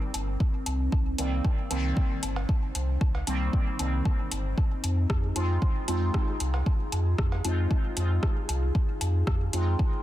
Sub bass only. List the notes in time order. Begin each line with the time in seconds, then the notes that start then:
0.14 G1
0.66 C2
0.92 C2
1.18 C2
1.71 C2
2.23 G1
2.75 C2
3.01 C2
3.27 C2
3.79 C2
4.32 G1
4.84 F2
5.10 F2
5.36 F2
5.88 F2
6.40 C2
6.92 F2
7.18 F2
7.45 F2
7.97 F2
8.49 C2
9.01 F2
9.27 F2
9.53 F2